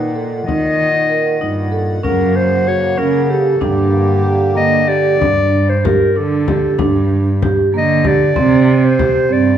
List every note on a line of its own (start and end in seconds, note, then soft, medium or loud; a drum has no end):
0.00 0.39 A#2 medium
0.00 2.00 A#2 medium
0.00 2.00 D#3 medium
0.00 0.19 B4 medium
0.00 3.56 F#5 medium
0.16 0.39 A4 medium
0.46 1.28 D#3 medium
0.46 0.95 D#4 medium
0.46 1.68 D#5 loud
0.46 frame drum medium
1.09 1.33 A#4 medium
1.41 1.95 G2 medium
1.41 1.65 D#4 medium
1.41 frame drum soft
1.72 1.96 A4 medium
2.03 2.85 F#2 medium
2.03 3.59 C#3 medium
2.03 3.59 A#3 medium
2.03 2.51 C#4 medium
2.03 2.38 A#4 medium
2.03 frame drum medium
2.36 2.69 C5 loud
2.67 2.90 F#4 medium
2.67 3.00 C#5 medium
2.98 3.52 C#3 medium
2.98 3.21 C#4 medium
2.98 3.24 A#4 medium
2.98 frame drum soft
3.24 3.33 A#4 medium
3.30 3.53 G4 medium
3.30 3.65 A4 medium
3.60 4.43 G2 loud
3.60 5.19 D3 medium
3.60 5.19 A#3 medium
3.60 4.08 D4 medium
3.60 5.18 G4 medium
3.60 4.56 G4 medium
3.60 frame drum medium
4.24 4.48 G4 medium
4.55 5.11 D3 medium
4.55 4.80 A#3 medium
4.55 4.90 D#5 loud
4.55 frame drum soft
4.88 5.12 G4 medium
4.88 5.71 D5 loud
5.20 6.03 G2 medium
5.20 5.68 D4 medium
5.20 frame drum medium
5.70 5.88 C5 medium
5.84 6.08 G4 medium
5.84 6.20 A#4 medium
5.84 frame drum medium
6.16 6.71 D3 medium
6.16 6.40 D4 medium
6.16 6.82 A4 medium
6.48 6.71 G4 medium
6.48 frame drum medium
6.78 7.60 G2 medium
6.78 7.26 D4 medium
6.78 7.43 G4 medium
6.78 frame drum medium
7.42 7.66 G4 medium
7.42 frame drum medium
7.74 8.28 D3 loud
7.74 7.97 A#3 medium
7.74 8.09 D#5 medium
8.05 8.28 G4 medium
8.05 8.76 D5 medium
8.05 frame drum medium
8.36 9.18 C3 loud
8.36 8.83 C4 medium
8.36 frame drum medium
8.76 8.87 D5 medium
8.85 9.34 C5 medium
8.99 9.22 G4 medium
8.99 frame drum medium
9.29 9.58 G2 medium
9.29 9.53 C4 medium
9.29 9.58 D5 medium